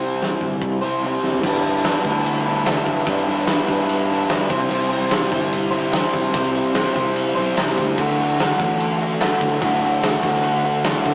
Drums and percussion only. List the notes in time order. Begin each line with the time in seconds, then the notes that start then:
0.22 snare, closed hi-hat
0.41 kick
0.61 kick, closed hi-hat
1.02 high tom
1.24 snare
1.33 floor tom
1.43 kick, crash
1.84 snare, ride bell
2.05 kick
2.26 ride bell
2.66 snare, ride bell
2.86 kick
3.07 kick, ride bell
3.38 snare
3.47 snare, ride bell
3.68 kick
3.89 ride bell
4.29 snare, ride bell
4.50 kick
4.71 crash
5.02 snare
5.11 snare, ride bell
5.32 kick
5.53 ride bell
5.93 snare, ride bell
6.14 kick
6.34 kick, ride bell
6.75 snare, ride bell
6.96 kick
7.16 ride bell
7.57 snare, ride bell
7.78 kick, snare
7.98 kick, crash
8.40 snare, ride bell
8.60 kick
8.80 ride bell
9.21 snare, ride bell
9.41 kick
9.62 kick, ride bell
10.03 snare, ride bell
10.23 kick
10.34 snare
10.43 ride bell
10.84 snare, ride bell
11.06 kick